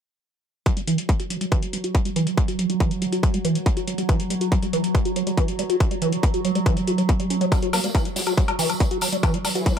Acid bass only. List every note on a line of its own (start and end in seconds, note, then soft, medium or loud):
0.66 0.73 F#3 medium
0.77 0.81 G3 medium
0.88 1.00 E3 loud
0.98 1.03 F#3 loud
1.09 1.14 G3 medium
1.20 1.27 F#4 medium
1.30 1.37 F#3 medium
1.41 1.46 G3 medium
1.52 1.64 E3 medium
1.63 1.67 F#3 loud
1.73 1.78 G3 medium
1.84 1.91 F#4 medium
1.95 2.02 F#3 medium
2.05 2.10 G3 medium
2.16 2.28 E3 loud
2.27 2.31 F#3 loud
2.38 2.42 G3 medium
2.48 2.55 F#4 medium
2.59 2.66 F#3 medium
2.70 2.74 G3 medium
2.80 2.93 E3 loud
2.91 2.96 F#3 loud
3.02 3.06 G3 medium
3.13 3.19 F#4 medium
3.23 3.30 F#3 medium
3.34 3.39 G3 medium
3.45 3.57 E3 loud
3.55 3.60 F#3 loud
3.66 3.71 G3 medium
3.77 3.84 F#4 medium
3.88 3.94 F#3 medium
3.98 4.03 G3 medium
4.09 4.21 E3 loud
4.20 4.24 F#3 loud
4.30 4.35 G3 medium
4.41 4.48 F#4 medium
4.52 4.59 F#3 medium
4.63 4.67 G3 medium
4.73 4.85 E3 loud
4.84 4.88 F#3 loud
4.95 4.99 G3 medium
5.05 5.12 F#4 medium
5.16 5.23 F#3 medium
5.27 5.31 G3 medium
5.38 5.50 E3 loud
5.48 5.53 F#3 loud
5.59 5.63 G3 medium
5.70 5.76 F#4 medium
5.80 5.87 F#3 medium
5.91 5.96 G3 medium
6.02 6.14 E3 loud
6.13 6.17 F#3 loud
6.23 6.28 G3 medium
6.34 6.41 F#4 medium
6.45 6.52 F#3 medium
6.55 6.60 G3 medium
6.66 6.78 E3 loud
6.77 6.81 F#3 loud
6.88 6.92 F#4 medium
6.98 7.03 F#3 medium
7.09 7.13 A#3 medium
7.20 7.26 G3 medium
7.30 7.37 C#4 medium
7.41 7.46 F#3 loud
7.52 7.56 G3 medium
7.63 7.69 F#4 medium
7.73 7.80 F#3 medium
7.84 7.88 G3 medium
7.95 8.07 E3 loud
8.05 8.10 F#3 loud
8.16 8.21 G3 medium
8.27 8.34 F#4 medium
8.38 8.44 F#3 medium
8.48 8.53 G3 medium
8.59 8.71 E3 loud
8.70 8.74 F#3 loud
8.80 8.85 G3 medium
8.91 8.98 F#4 medium
9.02 9.09 F#3 medium
9.12 9.17 G3 medium
9.23 9.35 E3 loud
9.34 9.38 F#3 loud
9.45 9.49 G3 medium
9.55 9.62 F#4 medium
9.66 9.73 F#3 medium